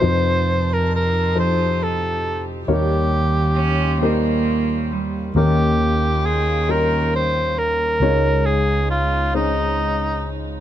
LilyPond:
<<
  \new Staff \with { instrumentName = "Cor anglais" } { \time 6/8 \key ees \mixolydian \tempo 4. = 45 c''8. bes'16 bes'8 c''8 a'8. r16 | g'2 r4 | g'4 aes'8 bes'8 c''8 bes'8~ | bes'8 aes'8 f'8 ees'4 r8 | }
  \new Staff \with { instrumentName = "Upright piano" } { \time 6/8 \key ees \mixolydian <f ees' f' c''>4. <f ees' a' c''>4. | <g ees' bes' des''>4. <g ees' bes' c''>4. | <bes des' ees' bes'>4. <g des' ees' bes'>4. | <aes des' ees' des''>4. <aes des' ees' c''>4. | }
  \new Staff \with { instrumentName = "Upright piano" } { \clef bass \time 6/8 \key ees \mixolydian <f,, f,>2. | <ees, ees>2. | <ees, ees>2. | <des, des>2. | }
  \new Staff \with { instrumentName = "String section" } { \time 6/8 \key ees \mixolydian <f c' ees' g' a''>2. | <ees bes des' f'>2. | <ees bes des' f' g''>2. | <aes des' ees'>2. | }
  \new Staff \with { instrumentName = "Cello" } { \time 6/8 \key ees \mixolydian r2. | r4 des'8 bes4 g8 | r2. | r2. | }
  \new Staff \with { instrumentName = "Fretless electric bass" } { \clef bass \time 6/8 \key ees \mixolydian f,2. | ees,2. | ees,2. | des,2. | }
>>